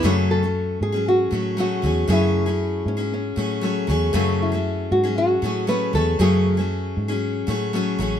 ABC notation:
X:1
M:4/4
L:1/16
Q:1/4=117
K:F#m
V:1 name="Pedal steel guitar"
[DB] z12 z3 | z16 | z16 | z16 |]
V:2 name="Nylon-string guitar"
z2 A4 G2 F4 F4 | E6 C2 C6 z2 | z2 E4 F2 F4 B2 A2 | G8 z8 |]
V:3 name="Steel-string acoustic guitar"
[F,,C,F,A,CG]3 [F,A,C]4 [F,CG]3 [F,A,CG]2 [F,A,CG]2 [F,A,CG]2 | [F,,C,F,A,CG]3 [F,A,CG]4 [F,CG]3 [F,A,CG]2 [F,A,CG]2 [F,A,CG]2 | [F,,C,F,A,CG]3 [F,A,CG]4 [F,CG]3 [F,A,CG]2 [F,A,CG]2 [F,A,CG]2 | [F,,C,F,A,CG]3 [F,A,CG]4 [F,CG]3 [F,A,CG]2 [F,A,CG]2 [F,A,CG]2 |]
V:4 name="Fingered electric bass" clef=bass
F,,6 G,,4 A,,4 E,,2 | F,,6 G,,4 A,,4 E,,2 | F,,6 G,,4 A,,4 E,,2 | F,,6 G,,4 A,,4 A,,,2 |]